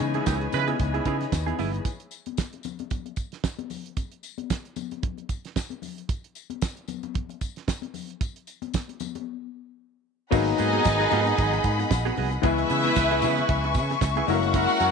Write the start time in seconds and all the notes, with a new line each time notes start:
Already playing: E3 G#3 B3 D#4 G#4 C#5 G#5 B5
0.00 C#3, muted clean electric guitar stroke, closed hi-hat
0.14 B3 E4 G#4, closed hi-hat, high conga
0.26 C#2 B3 E4 G#4, kick, snare, tambourine, muted conga
0.41 muted clean electric guitar stroke, closed hi-hat
0.52 C#3 G#3 B3 E4 B4, muted clean electric guitar stroke, closed hi-hat, tambourine, high conga, low conga
0.68 B3 E4 G#4, closed hi-hat, high conga
0.79 C#2, muted clean electric guitar stroke, kick, closed hi-hat, tambourine
0.94 B3 E4 G#4, closed hi-hat, muted conga
1.05 C#3 B3 E4 G#4, kick, closed hi-hat, tambourine
1.20 muted clean electric guitar stroke, snare, closed hi-hat
1.32 D#2, muted clean electric guitar stroke, kick, snare, tambourine
1.46 B3 E4 G#4, closed hi-hat, muted conga, high conga
1.59 G1 B3 E4 G#4, open hi-hat, tambourine, low conga
1.73 muted clean electric guitar stroke, closed hi-hat
1.85 kick, closed hi-hat, tambourine, muted conga
2.00 closed hi-hat
2.11 closed hi-hat, tambourine
2.26 closed hi-hat, high conga
2.37 kick, snare, tambourine
2.53 closed hi-hat, muted conga
2.63 closed hi-hat, tambourine, high conga, low conga
2.79 closed hi-hat, high conga
2.90 kick, closed hi-hat, tambourine, muted conga, low conga
3.06 closed hi-hat, muted conga
3.16 kick, closed hi-hat, tambourine
3.32 snare, closed hi-hat
3.44 kick, snare, tambourine
3.59 closed hi-hat, muted conga, high conga
3.70 open hi-hat, tambourine, low conga
3.86 closed hi-hat
3.97 kick, closed hi-hat, tambourine, muted conga
4.12 closed hi-hat
4.23 closed hi-hat, tambourine
4.38 closed hi-hat, high conga
4.50 kick, snare, tambourine, muted conga
4.65 closed hi-hat
4.76 closed hi-hat, tambourine, high conga, low conga
4.91 closed hi-hat, high conga
5.03 kick, closed hi-hat, low conga
5.18 closed hi-hat, muted conga
5.29 kick, closed hi-hat, tambourine
5.45 snare, closed hi-hat
5.56 kick, snare, tambourine
5.70 closed hi-hat, high conga
5.82 open hi-hat, tambourine, low conga
5.98 closed hi-hat
6.09 kick, closed hi-hat, tambourine
6.24 closed hi-hat
6.35 closed hi-hat, tambourine
6.50 closed hi-hat, high conga
6.62 kick, snare, tambourine
6.77 closed hi-hat
6.88 closed hi-hat, tambourine, high conga, low conga
7.03 closed hi-hat, high conga
7.14 kick, closed hi-hat, muted conga, low conga
7.29 closed hi-hat, muted conga
7.41 kick, closed hi-hat, tambourine
7.56 snare, closed hi-hat
7.68 kick, snare, tambourine, muted conga
7.82 closed hi-hat, high conga
7.94 open hi-hat, tambourine, low conga
8.10 closed hi-hat
8.21 kick, closed hi-hat, tambourine
8.36 closed hi-hat
8.47 closed hi-hat, tambourine
8.62 closed hi-hat, high conga
8.74 kick, snare, tambourine
8.89 closed hi-hat, muted conga
9.00 closed hi-hat, tambourine, high conga, low conga
9.15 closed hi-hat, high conga
10.31 G#1 D#3 F#3 G#3 A#3 B3 D#4 F#4 G#4 D#5 F#5 B5, kick, crash, tambourine
10.47 closed hi-hat
10.58 G#2 B3 F#4 G#4, closed hi-hat, tambourine
10.73 B3 F#4 G#4, closed hi-hat, high conga
10.85 G#1, kick, snare, tambourine
10.99 B3 F#4 G#4, closed hi-hat, muted conga
11.11 G#2 B3 F#4 G#4, closed hi-hat, tambourine, high conga, low conga
11.26 muted clean electric guitar stroke, closed hi-hat, high conga
11.38 G#1, muted clean electric guitar stroke, kick, closed hi-hat, tambourine, muted conga, low conga
11.53 muted clean electric guitar stroke, closed hi-hat, muted conga
11.64 G#2, kick, closed hi-hat, tambourine
11.79 muted clean electric guitar stroke, snare, closed hi-hat, high conga
11.91 A#1, muted clean electric guitar stroke, kick, snare, tambourine
12.05 B3 F#4 G#4, closed hi-hat, muted conga, high conga
12.17 C2 B3 F#4 G#4, open hi-hat, low conga
12.32 muted clean electric guitar stroke, closed hi-hat
12.42 C#2 E3 G#3 B3 E4 G#4 B4 E5 G#5 C#6, kick, closed hi-hat, tambourine, muted conga
12.58 closed hi-hat, muted conga
12.69 C#3 B3 E4 G#4, closed hi-hat, tambourine
12.84 B3 E4 G#4, closed hi-hat, high conga
12.96 C#2, muted clean electric guitar stroke, kick, snare, tambourine
13.11 B3 E4 G#4, closed hi-hat, muted conga
13.22 C#3 B3 E4 G#4, closed hi-hat, tambourine, high conga, low conga
13.37 muted clean electric guitar stroke, closed hi-hat, high conga
13.49 C#2, muted clean electric guitar stroke, kick, closed hi-hat, muted conga, low conga
13.64 muted clean electric guitar stroke, closed hi-hat
13.74 C#3, kick, closed hi-hat, tambourine
13.90 muted clean electric guitar stroke, snare, closed hi-hat, high conga
14.01 C#2, muted clean electric guitar stroke, kick, snare, tambourine, muted conga
14.16 B3 E4 G#4, closed hi-hat, high conga
14.27 F#1 F#3 G#3 A3 A#3 C#4 E4 F#4 A#4 F#5, open hi-hat, tambourine, low conga
14.34 A#3
14.43 muted clean electric guitar stroke, closed hi-hat
14.54 C#4 E4 A#4, kick, closed hi-hat, tambourine, muted conga
14.69 closed hi-hat, muted conga
14.80 F#2 C#4 E4 A#4, closed hi-hat, tambourine